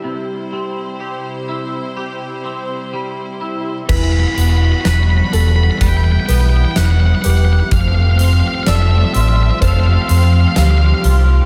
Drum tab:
CC |--------|x-------|--------|
HH |--------|-xxxxxxx|xxxxxxxx|
SD |--------|--o---o-|--o---o-|
BD |--------|o---o---|o---o---|